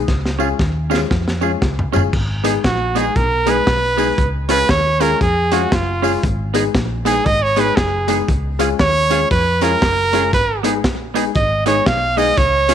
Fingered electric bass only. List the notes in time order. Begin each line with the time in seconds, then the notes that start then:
0.09 C#2
0.60 D#2
1.11 F2
1.62 C#2
1.94 F#1
2.14 G#1
2.65 A#1
3.16 B1
3.67 B1
4.18 C#2
4.69 D#2
5.21 F2
5.72 F#1
6.24 G#1
6.75 A#1
7.26 G#1
7.77 F#1
8.29 C#2
8.80 D#2
9.31 F2
9.82 F#1
10.33 G#1
10.84 A#1
11.36 G#1
11.87 B1
12.38 C#2